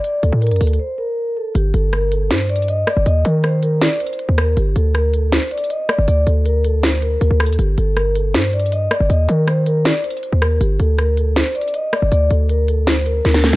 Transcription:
0.04 D5, closed hi-hat
0.23 D2 A4, closed hi-hat
0.33 A2
0.41 A#4, closed hi-hat
0.47 closed hi-hat
0.51 F#2, closed hi-hat
0.56 closed hi-hat
0.61 D2 A4, closed hi-hat, open hi-hat
0.67 closed hi-hat
0.73 closed hi-hat
0.79 C5
0.98 A#4
1.37 A4
1.55 G1 G4, closed hi-hat
1.74 G1 A4, closed hi-hat
1.93 A#4, cross-stick, closed hi-hat
2.12 A4, closed hi-hat
2.30 G2 C5, snare, closed hi-hat
2.49 D5, closed hi-hat
2.56 closed hi-hat
2.62 closed hi-hat
2.68 D#5, closed hi-hat
2.87 D5, cross-stick, closed hi-hat
2.97 G1
3.06 D#2 D#5, closed hi-hat
3.24 D#3 A#4, closed hi-hat
3.43 C5, cross-stick, closed hi-hat
3.63 A#4, closed hi-hat
3.81 D5, snare, closed hi-hat
4.00 C5, closed hi-hat
4.07 closed hi-hat
4.13 closed hi-hat
4.19 closed hi-hat
4.29 D#2
4.38 A#4, cross-stick, closed hi-hat
4.57 G1 G4, closed hi-hat
4.76 D2 A4, closed hi-hat
4.95 A#4, cross-stick, closed hi-hat
5.14 A4, closed hi-hat
5.32 C5, snare, closed hi-hat
5.51 D5, closed hi-hat
5.58 closed hi-hat
5.64 closed hi-hat
5.70 D#5, closed hi-hat
5.89 D5, cross-stick, closed hi-hat
5.99 G1
6.08 D2 D5, closed hi-hat
6.27 D2 A4, closed hi-hat
6.45 A#4, closed hi-hat
6.65 A4, closed hi-hat
6.83 C5, snare, closed hi-hat
7.02 A#4, closed hi-hat
7.21 D2, closed hi-hat
7.31 D2
7.40 A4, cross-stick, closed hi-hat
7.46 D#2, closed hi-hat
7.53 closed hi-hat
7.58 G1 G4, closed hi-hat
7.77 G1 A4, closed hi-hat
7.97 A#4, cross-stick, closed hi-hat
8.16 A4, closed hi-hat
8.34 G2 C5, snare, closed hi-hat
8.53 D5, closed hi-hat
8.60 closed hi-hat
8.66 closed hi-hat
8.72 D#5, closed hi-hat
8.91 D5, cross-stick, closed hi-hat
9.00 G1
9.09 D#2 D#5, closed hi-hat
9.28 D#3 A#4, closed hi-hat
9.47 C5, cross-stick, closed hi-hat
9.66 A#4, closed hi-hat
9.85 D5, snare, closed hi-hat
10.04 C5, closed hi-hat
10.11 closed hi-hat
10.17 closed hi-hat
10.23 closed hi-hat
10.32 D#2
10.42 A#4, cross-stick, closed hi-hat
10.60 G1 G4, closed hi-hat
10.80 D2 A4, closed hi-hat
10.98 A#4, cross-stick, closed hi-hat
11.17 A4, closed hi-hat
11.36 C5, snare, closed hi-hat
11.55 D5, closed hi-hat
11.61 closed hi-hat
11.68 closed hi-hat
11.74 D#5, closed hi-hat
11.93 D5, cross-stick, closed hi-hat
12.02 G1
12.12 D2 D5, closed hi-hat
12.30 D2 A4, closed hi-hat
12.49 A#4, closed hi-hat
12.68 A4, closed hi-hat
12.87 C5, snare, closed hi-hat
13.06 A#4, closed hi-hat
13.25 D2, snare, closed hi-hat
13.34 snare
13.44 A4, snare, closed hi-hat
13.50 closed hi-hat

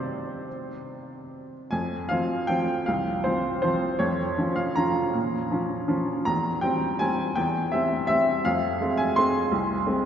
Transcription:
Already playing: C3 D#3 C4 G4 C5 D5
1.71 F2 G#5
2.09 F3 C4 F4 F5
2.47 F3 C4 F4 G5
2.86 C2 F5
3.24 F3 C4 F4 C5
3.62 F3 C4 F4 C5
3.99 F2 C#5
4.38 F3 C#4 F4
4.56 F5
4.76 F3 C#4 F4 A#5
5.14 A#2
5.51 F3 C#4 F4
5.88 F3 C#4 F4
6.25 E2 A#5
6.61 G3 C4 G5
6.99 G3 C4 G#5
7.36 E2 G5
7.72 G3 C4 E5
8.07 G3 C4 E5
8.45 F2 F5
8.81 G#3 C4
8.97 G#5
9.16 G#3 C4 C6
9.52 C2
9.86 G#3 C4

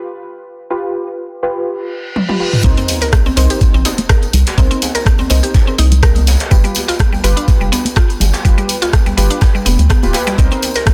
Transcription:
Already playing: F4 G4 B4
0.70 F4 G4 B4
1.43 F4 G4 B4
1.67 reverse cymbal
2.16 high tom
2.28 F4 G4 B4, high tom
2.40 F4 G4 B4
2.53 mid tom
2.63 C2 C4 D#4 A#4 C5, kick, closed hi-hat, tambourine, sub drop, djembe tone, low conga
2.77 C4, closed hi-hat, tambourine, muted conga
2.88 open hi-hat, tambourine, djembe tone
3.01 A#4, open hi-hat, tambourine, djembe slap
3.12 kick, cross-stick, closed hi-hat, tambourine, djembe tone, high conga
3.26 C4, tambourine, muted conga, djembe bass
3.36 C2 C4 D#4 A#4 C5, open hi-hat, tambourine, djembe tone
3.50 G4, closed hi-hat, tambourine
3.61 kick, closed hi-hat, tambourine, muted conga, djembe tone, djembe bass
3.74 A#1 C4, tambourine
3.85 D#4, open hi-hat, tambourine, djembe slap, djembe tone
3.98 closed hi-hat, tambourine, muted conga, high conga
4.09 A#4, kick, cross-stick, closed hi-hat, tambourine, djembe tone
4.22 closed hi-hat, tambourine
4.33 C2, open hi-hat, tambourine, muted conga, djembe tone, high conga, low conga
4.47 closed hi-hat, tambourine, djembe slap
4.57 C2 C4 D#4 A#4 C5, kick, closed hi-hat, tambourine, djembe tone
4.71 C4, closed hi-hat, tambourine, muted conga
4.82 open hi-hat, tambourine, djembe tone
4.95 A#4, closed hi-hat, tambourine, djembe slap
5.05 kick, cross-stick, closed hi-hat, tambourine, high conga, djembe tone
5.18 C4, tambourine, muted conga, djembe bass
5.29 C2 C4 D#4 A#4 C5, open hi-hat, tambourine, high conga, djembe tone
5.43 G4, closed hi-hat, tambourine
5.54 kick, open hi-hat, tambourine, djembe slap, muted conga, djembe tone
5.67 C4, tambourine
5.78 C2 D#4, open hi-hat, tambourine, high conga, djembe tone
5.91 closed hi-hat, tambourine, muted conga, low conga
6.03 A#4, kick, cross-stick, closed hi-hat, tambourine, djembe tone
6.15 closed hi-hat, tambourine, high conga, djembe bass
6.26 open hi-hat, tambourine, muted conga, djembe slap, high conga, djembe tone
6.39 closed hi-hat, tambourine, djembe slap
6.50 G1 G3 F4 G4 B4, kick, closed hi-hat, tambourine, djembe tone, low conga
6.64 G3, closed hi-hat, tambourine, muted conga
6.75 open hi-hat, tambourine, djembe tone
6.88 F4, open hi-hat, tambourine, djembe slap
6.99 kick, cross-stick, closed hi-hat, tambourine, djembe tone, high conga
7.12 G3, tambourine, muted conga, djembe bass
7.24 G1 G3 F4 G4 B4, open hi-hat, tambourine, djembe tone
7.37 D4, closed hi-hat, tambourine
7.48 kick, closed hi-hat, tambourine, muted conga, djembe tone, djembe bass
7.61 F1 G3, tambourine
7.72 B3, open hi-hat, tambourine, djembe slap, djembe tone
7.85 closed hi-hat, tambourine, muted conga, high conga
7.96 F4, kick, cross-stick, closed hi-hat, tambourine, djembe tone
8.10 closed hi-hat, tambourine
8.20 G1, open hi-hat, tambourine, muted conga, high conga, djembe tone, low conga
8.33 closed hi-hat, tambourine, djembe slap
8.45 G1 G3 F4 G4 B4, kick, closed hi-hat, tambourine, djembe tone
8.58 G3, closed hi-hat, tambourine, muted conga
8.68 open hi-hat, tambourine, djembe tone
8.82 F4, closed hi-hat, tambourine, djembe slap
8.93 kick, cross-stick, closed hi-hat, tambourine, high conga, djembe tone
9.06 G3, closed hi-hat, tambourine, muted conga, djembe bass
9.17 G1 G3 F4 G4 B4, open hi-hat, tambourine, djembe tone, high conga
9.30 D4, closed hi-hat, tambourine
9.41 kick, cross-stick, open hi-hat, tambourine, djembe slap, muted conga, djembe tone
9.55 G3, tambourine
9.65 F1 B3, open hi-hat, tambourine, djembe tone, high conga
9.78 D2, closed hi-hat, tambourine, muted conga, low conga
9.89 B3, kick, cross-stick, closed hi-hat, tambourine, djembe tone
10.03 D1 F4 G4 B4, closed hi-hat, tambourine, high conga, djembe bass
10.13 F4 G4 B4, open hi-hat, tambourine, djembe slap, muted conga, djembe tone, high conga
10.27 G3, closed hi-hat, tambourine, djembe slap
10.38 C2 C4 D#4 A#4 C5, kick, closed hi-hat, tambourine, djembe tone, low conga
10.51 C4, closed hi-hat, tambourine, muted conga
10.62 open hi-hat, tambourine, djembe tone
10.74 A#4, open hi-hat, tambourine, djembe slap
10.86 kick, cross-stick, closed hi-hat, tambourine, high conga, djembe tone

